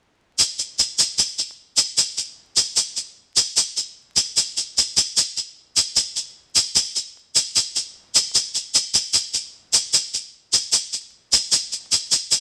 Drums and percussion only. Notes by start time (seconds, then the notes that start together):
0.39 shaker
0.59 shaker
0.79 shaker
0.99 shaker
1.19 shaker
1.39 shaker
1.77 shaker
1.98 shaker
2.18 shaker
2.57 shaker
2.77 shaker
2.97 shaker
3.37 shaker
3.57 shaker
3.77 shaker
4.17 shaker
4.37 shaker
4.57 shaker
4.78 shaker
4.97 shaker
5.17 shaker
5.37 shaker
5.77 shaker
5.96 shaker
6.16 shaker
6.56 shaker
6.76 shaker
6.96 shaker
7.36 shaker
7.56 shaker
7.76 shaker
8.15 shaker
8.35 shaker
8.55 shaker
8.75 shaker
8.94 shaker
9.14 shaker
9.34 shaker
9.74 shaker
9.94 shaker
10.14 shaker
10.53 shaker
10.73 shaker
10.93 shaker
11.33 shaker
11.52 shaker
11.72 shaker
11.92 shaker
12.12 shaker
12.32 shaker